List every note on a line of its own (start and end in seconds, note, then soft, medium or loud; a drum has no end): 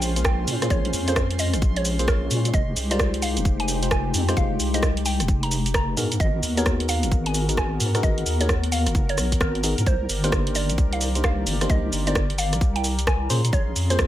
0.00 0.46 A#1 loud
0.00 5.93 G#3 medium
0.00 0.13 A#3 loud
0.00 0.13 C#4 medium
0.00 2.50 C#4 medium
0.00 2.54 C#4 medium
0.00 0.13 F4 medium
0.00 2.50 F4 medium
0.00 0.13 G#4 medium
0.00 0.13 C5 loud
0.00 3.46 C5 medium
0.00 2.54 G#5 medium
0.00 5.93 C6 medium
0.00 open hi-hat loud
0.00 shaker medium
0.16 0.59 A#3 medium
0.16 0.59 C#4 medium
0.16 0.59 F4 medium
0.16 0.59 G#4 medium
0.16 0.59 C5 medium
0.16 closed hi-hat medium
0.16 shaker soft
0.25 0.45 G5 loud
0.25 kick loud
0.25 cross-stick loud
0.25 shaker soft
0.48 0.68 A#2 loud
0.48 open hi-hat loud
0.48 shaker medium
0.62 1.04 A#3 medium
0.62 1.04 C#4 medium
0.62 1.04 F4 medium
0.62 1.04 G#4 medium
0.62 1.04 C5 loud
0.62 cross-stick medium
0.62 closed hi-hat medium
0.62 shaker soft
0.70 0.91 A#1 loud
0.70 0.87 C#5 loud
0.70 kick loud
0.70 shaker soft
0.85 closed hi-hat soft
0.93 1.55 F2 loud
0.93 open hi-hat loud
0.93 shaker medium
1.08 1.20 A#3 medium
1.08 1.20 C#4 medium
1.08 1.20 F4 medium
1.08 1.20 G#4 medium
1.08 1.20 C5 loud
1.08 1.20 C5 medium
1.08 closed hi-hat medium
1.08 shaker soft
1.16 kick loud
1.16 cross-stick loud
1.16 shaker soft
1.31 closed hi-hat medium
1.39 1.56 D#5 loud
1.39 open hi-hat loud
1.39 shaker medium
1.54 1.64 G#1 medium
1.54 cross-stick soft
1.54 closed hi-hat medium
1.54 shaker soft
1.62 2.29 A#1 loud
1.62 kick loud
1.62 shaker soft
1.76 1.88 C#5 medium
1.76 closed hi-hat medium
1.85 open hi-hat loud
1.85 shaker medium
1.99 2.07 A#3 medium
1.99 2.07 C#4 medium
1.99 2.07 F4 medium
1.99 2.07 G#4 medium
1.99 2.07 C5 loud
1.99 closed hi-hat medium
1.99 shaker soft
2.08 2.53 A#3 medium
2.08 2.53 C#4 medium
2.08 2.28 A#4 loud
2.08 2.53 C#5 medium
2.08 kick loud
2.08 cross-stick loud
2.08 shaker soft
2.31 2.52 A#2 loud
2.31 open hi-hat loud
2.31 shaker medium
2.45 closed hi-hat medium
2.45 shaker soft
2.53 2.74 F1 loud
2.53 7.42 D#4 medium
2.53 5.94 G4 medium
2.53 2.70 D#5 loud
2.53 kick loud
2.53 shaker soft
2.77 3.38 C2 loud
2.77 open hi-hat loud
2.77 shaker medium
2.89 6.63 G#3 medium
2.89 3.79 G#3 loud
2.89 3.79 D#4 medium
2.89 3.79 F4 medium
2.89 3.79 G4 medium
2.89 3.79 C5 loud
2.89 3.03 D5 medium
2.89 closed hi-hat medium
2.89 shaker soft
2.99 kick loud
2.99 cross-stick loud
2.99 shaker soft
3.14 5.97 G5 medium
3.14 closed hi-hat medium
3.22 3.39 F5 medium
3.22 open hi-hat loud
3.22 shaker medium
3.37 3.47 D#1 medium
3.37 closed hi-hat medium
3.37 shaker soft
3.45 4.12 F1 loud
3.45 kick loud
3.45 shaker soft
3.60 3.72 G#5 loud
3.60 closed hi-hat medium
3.68 open hi-hat loud
3.68 shaker medium
3.83 4.25 G#3 medium
3.83 4.25 D#4 medium
3.83 4.25 F4 medium
3.83 4.25 G4 medium
3.83 4.25 C5 medium
3.83 closed hi-hat medium
3.83 shaker soft
3.91 4.11 G#5 medium
3.91 kick loud
3.91 cross-stick loud
3.91 shaker soft
4.14 4.35 F2 loud
4.14 open hi-hat loud
4.14 shaker medium
4.28 4.71 G#3 medium
4.28 4.71 D#4 medium
4.28 4.71 F4 medium
4.28 4.71 G4 medium
4.28 4.71 C5 loud
4.28 cross-stick medium
4.28 closed hi-hat medium
4.28 shaker soft
4.37 4.58 F1 loud
4.37 4.53 F5 loud
4.37 kick loud
4.37 shaker soft
4.60 5.21 C2 loud
4.60 open hi-hat loud
4.60 shaker medium
4.74 4.86 G#3 medium
4.74 4.86 D#4 medium
4.74 4.86 F4 medium
4.74 4.86 G4 medium
4.74 4.86 C5 loud
4.74 4.86 D#5 medium
4.74 closed hi-hat medium
4.74 shaker soft
4.83 kick loud
4.83 cross-stick loud
4.83 shaker soft
4.97 closed hi-hat medium
5.06 5.22 G5 loud
5.06 open hi-hat loud
5.06 shaker medium
5.20 5.30 D#1 medium
5.20 cross-stick soft
5.20 closed hi-hat medium
5.20 shaker soft
5.28 5.95 F1 loud
5.28 kick loud
5.28 shaker soft
5.43 5.55 A#5 medium
5.43 closed hi-hat medium
5.51 open hi-hat loud
5.51 shaker medium
5.66 closed hi-hat medium
5.66 shaker soft
5.74 5.94 A#5 loud
5.74 kick loud
5.74 cross-stick loud
5.74 shaker soft
5.97 6.18 G#2 loud
5.97 6.08 B3 medium
5.97 9.83 B3 medium
5.97 9.87 B3 medium
5.97 6.08 D#4 medium
5.97 6.08 F#4 medium
5.97 9.83 F#4 medium
5.97 6.08 G#4 medium
5.97 13.26 A#4 loud
5.97 6.08 A#4 loud
5.97 open hi-hat loud
5.97 shaker medium
6.12 closed hi-hat medium
6.12 shaker soft
6.20 6.41 G#1 loud
6.20 6.36 D#5 loud
6.20 kick loud
6.20 shaker soft
6.43 7.05 D#2 loud
6.43 open hi-hat loud
6.43 shaker medium
6.57 7.46 B3 loud
6.57 7.46 D#4 medium
6.57 7.46 F#4 medium
6.57 7.46 G#4 medium
6.57 7.46 A#4 loud
6.57 6.69 C#5 medium
6.57 closed hi-hat medium
6.57 shaker soft
6.66 kick loud
6.66 cross-stick loud
6.66 shaker soft
6.80 closed hi-hat medium
6.87 10.86 A#4 medium
6.87 7.05 F5 loud
6.87 open hi-hat loud
6.87 shaker medium
7.03 7.13 F#1 medium
7.03 closed hi-hat medium
7.03 shaker soft
7.12 7.79 G#1 loud
7.12 kick loud
7.12 shaker soft
7.24 9.86 F#5 medium
7.24 7.38 G#5 medium
7.24 closed hi-hat medium
7.34 open hi-hat loud
7.34 shaker medium
7.49 7.91 B3 medium
7.49 7.91 D#4 medium
7.49 7.91 F#4 medium
7.49 7.91 G#4 medium
7.49 7.91 A#4 medium
7.49 closed hi-hat medium
7.49 shaker soft
7.57 7.77 G#5 loud
7.57 kick loud
7.57 cross-stick loud
7.57 shaker soft
7.80 8.01 G#2 loud
7.80 open hi-hat loud
7.80 shaker medium
7.95 8.37 B3 medium
7.95 8.37 D#4 medium
7.95 8.37 F#4 medium
7.95 8.37 G#4 medium
7.95 8.37 A#4 loud
7.95 cross-stick medium
7.95 closed hi-hat medium
7.95 shaker soft
8.03 8.24 G#1 loud
8.03 8.20 D#5 loud
8.03 kick loud
8.03 shaker soft
8.18 closed hi-hat soft
8.26 8.88 D#2 loud
8.26 open hi-hat loud
8.26 shaker medium
8.40 8.52 B3 medium
8.40 8.52 D#4 medium
8.40 8.52 F#4 medium
8.40 8.52 G#4 medium
8.40 8.52 A#4 medium
8.40 8.52 C#5 loud
8.40 closed hi-hat medium
8.40 shaker soft
8.49 kick loud
8.49 cross-stick loud
8.49 shaker soft
8.64 closed hi-hat medium
8.72 8.88 F5 medium
8.72 open hi-hat loud
8.72 shaker medium
8.86 9.19 F#1 medium
8.86 cross-stick soft
8.86 closed hi-hat medium
8.86 shaker soft
8.95 kick loud
8.95 shaker soft
9.09 9.21 C#5 medium
9.09 closed hi-hat medium
9.18 9.34 B1 medium
9.18 cross-stick medium
9.18 open hi-hat loud
9.18 shaker medium
9.32 9.75 G#1 medium
9.32 kick medium
9.32 closed hi-hat medium
9.32 shaker soft
9.41 9.61 A#4 loud
9.41 kick loud
9.41 cross-stick loud
9.41 shaker soft
9.55 closed hi-hat soft
9.63 9.75 B3 medium
9.63 9.75 D#4 medium
9.63 9.75 F#4 medium
9.63 9.75 G#4 medium
9.63 9.75 A#4 loud
9.63 open hi-hat loud
9.63 shaker medium
9.78 9.85 G#2 medium
9.78 closed hi-hat medium
9.78 shaker soft
9.86 10.07 C2 loud
9.86 14.07 D#3 medium
9.86 13.27 G4 medium
9.86 10.03 C5 loud
9.86 13.27 D5 medium
9.86 kick loud
9.86 shaker soft
10.09 10.71 G1 loud
10.09 open hi-hat loud
10.09 shaker medium
10.24 11.12 A#3 loud
10.24 11.12 D4 medium
10.24 11.12 D#4 medium
10.24 11.12 G4 medium
10.24 10.36 A#4 medium
10.24 11.12 C5 loud
10.24 closed hi-hat medium
10.24 shaker soft
10.29 13.30 D5 loud
10.29 kick loud
10.29 cross-stick loud
10.29 shaker soft
10.47 closed hi-hat medium
10.55 10.72 D5 medium
10.55 open hi-hat loud
10.55 shaker medium
10.70 10.80 A#1 medium
10.70 closed hi-hat medium
10.70 shaker soft
10.78 11.45 C2 loud
10.78 14.07 A#5 medium
10.78 kick loud
10.78 shaker soft
10.93 11.04 F5 medium
10.93 closed hi-hat medium
11.01 open hi-hat loud
11.01 shaker medium
11.15 11.58 A#3 medium
11.15 11.58 D4 medium
11.15 11.58 D#4 medium
11.15 11.58 G4 medium
11.15 11.58 C5 medium
11.15 closed hi-hat medium
11.15 shaker soft
11.24 11.44 F5 loud
11.24 kick loud
11.24 cross-stick loud
11.24 shaker soft
11.47 11.68 G1 loud
11.47 open hi-hat loud
11.47 shaker medium
11.61 12.04 A#3 loud
11.61 12.04 D4 medium
11.61 12.04 D#4 medium
11.61 12.04 G4 medium
11.61 12.04 C5 loud
11.61 cross-stick medium
11.61 closed hi-hat medium
11.61 shaker soft
11.70 11.90 C2 loud
11.70 11.86 D#5 loud
11.70 kick loud
11.70 shaker soft
11.93 12.55 G1 loud
11.93 open hi-hat loud
11.93 shaker medium
12.07 12.19 A#3 medium
12.07 12.19 D4 medium
12.07 12.19 D#4 medium
12.07 12.19 G4 medium
12.07 12.19 C5 loud
12.07 12.19 D5 medium
12.07 closed hi-hat medium
12.07 shaker soft
12.15 kick loud
12.15 cross-stick loud
12.15 shaker soft
12.30 closed hi-hat soft
12.38 12.55 F5 medium
12.38 open hi-hat loud
12.38 shaker medium
12.53 12.63 A#1 medium
12.53 cross-stick soft
12.53 closed hi-hat medium
12.53 shaker soft
12.61 13.28 C2 loud
12.61 kick loud
12.61 shaker soft
12.76 12.87 G5 medium
12.76 closed hi-hat medium
12.84 open hi-hat loud
12.84 shaker medium
12.99 closed hi-hat medium
12.99 shaker soft
13.07 13.27 G#5 loud
13.07 kick loud
13.07 cross-stick loud
13.07 shaker soft
13.30 13.51 A#2 loud
13.30 13.41 A#3 medium
13.30 14.07 C#4 medium
13.30 13.41 C#4 medium
13.30 14.07 C#4 medium
13.30 13.41 F4 medium
13.30 14.07 F4 medium
13.30 13.41 G#4 medium
13.30 14.07 G#4 medium
13.30 13.41 C5 loud
13.30 14.07 C6 medium
13.30 open hi-hat loud
13.30 shaker medium
13.45 closed hi-hat medium
13.45 shaker soft
13.53 13.74 A#1 loud
13.53 13.69 C#5 loud
13.53 kick loud
13.53 shaker soft
13.75 14.07 F2 loud
13.75 14.07 G#5 medium
13.75 open hi-hat loud
13.75 shaker medium
13.90 14.07 A#3 loud
13.90 14.07 C#4 medium
13.90 14.07 F4 medium
13.90 14.07 G#4 medium
13.90 14.07 C5 loud
13.90 14.02 C5 loud
13.90 closed hi-hat medium
13.90 shaker soft
13.99 kick loud
13.99 cross-stick loud
13.99 shaker soft